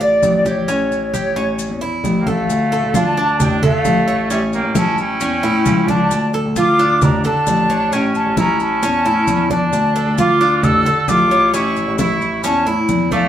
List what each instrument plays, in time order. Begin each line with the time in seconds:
Already playing: grand piano A1
0.00 cuban tres D5, flute D5, high conga, maracas
0.23 grand piano A1, high conga, maracas
0.45 cuban tres G4, flute C#5, high conga, maracas
0.68 grand piano A1, cuban tres C#4, high conga, maracas
0.91 high conga, maracas
1.14 cuban tres G4, high conga, maracas
1.36 grand piano A1, cuban tres C#4, high conga, maracas
1.59 high conga, maracas
1.70 grand piano E2
1.81 cuban tres E4, high conga, maracas
2.04 grand piano A1, high conga, maracas
2.20 trumpet A#3, flute G5
2.27 trumpet A3, cuban tres A4, flute F5, high conga, maracas
2.49 grand piano D2, high conga, maracas
2.72 cuban tres A4, high conga, maracas
2.83 grand piano D2
2.94 trumpet D4, cuban tres F4, flute A5, high conga, maracas
3.17 cuban tres D4, high conga, maracas
3.40 grand piano A1, trumpet D4, flute G5, high conga, low conga, maracas
3.62 grand piano D3, trumpet A3, cuban tres A4, flute F5, high conga, low conga, maracas
3.85 grand piano A1, high conga, maracas
4.08 cuban tres C#5, high conga, maracas
4.30 grand piano A1, trumpet G3, cuban tres C#4, flute E5, high conga, maracas
4.53 trumpet A#3, flute G5, high conga, maracas
4.64 grand piano A1
4.75 trumpet C#4, cuban tres E4, flute A5, high conga, maracas
4.98 trumpet C#4, flute G5, high conga, maracas
5.21 grand piano E2, cuban tres C#4, high conga, maracas
5.43 grand piano A2, cuban tres E4, high conga, maracas
5.66 grand piano C#2, high conga, maracas
5.88 trumpet D4, cuban tres D5, flute A5, high conga, maracas
6.11 grand piano D2, high conga, maracas
6.33 cuban tres A4, high conga, maracas
6.45 grand piano D2
6.56 cuban tres F4, trumpet F4, flute D6, high conga, maracas
6.79 cuban tres D4, high conga, maracas
7.02 grand piano A1, trumpet D4, flute A#5, high conga, low conga, maracas
7.24 grand piano D3, trumpet D4, cuban tres A4, flute A5, high conga, maracas
7.47 grand piano A1, high conga, maracas
7.70 cuban tres C#5, high conga, maracas
7.92 grand piano A1, cuban tres C#4, trumpet C#4, flute G5, high conga, maracas
8.15 trumpet C#4, flute A5, high conga, maracas
8.26 grand piano A1
8.37 trumpet C#4, cuban tres E4, flute A#5, high conga, maracas
8.60 trumpet C#4, flute A5, high conga, maracas
8.82 grand piano E2, cuban tres C#4, high conga, maracas
9.05 grand piano A2, cuban tres E4, high conga, maracas
9.27 grand piano E2, high conga, maracas
9.50 trumpet D4, cuban tres D5, flute A5, high conga, maracas
9.72 grand piano D2, high conga, maracas
9.96 cuban tres A4, high conga, maracas
10.06 grand piano D2
10.18 cuban tres F4, trumpet F4, flute D6, high conga, maracas
10.41 cuban tres D4, high conga, maracas
10.63 grand piano A1, trumpet A4, flute E6, high conga, low conga, maracas
10.85 grand piano D3, cuban tres A4, high conga, maracas
11.08 grand piano A1, trumpet F4, flute D6, high conga, maracas
11.31 cuban tres C#5, high conga, maracas
11.53 grand piano A1, cuban tres C#4, trumpet E4, flute C#6, high conga, maracas
11.76 high conga, maracas
11.88 grand piano A1
11.98 trumpet E4, cuban tres E4, flute C#6, high conga, maracas
12.21 high conga, maracas
12.43 grand piano E2, trumpet C#4, cuban tres C#4, flute A5, high conga, maracas
12.66 grand piano A2, cuban tres E4, high conga, maracas
12.89 grand piano E2, high conga, maracas
13.11 trumpet A3, cuban tres D5, flute F5, high conga, maracas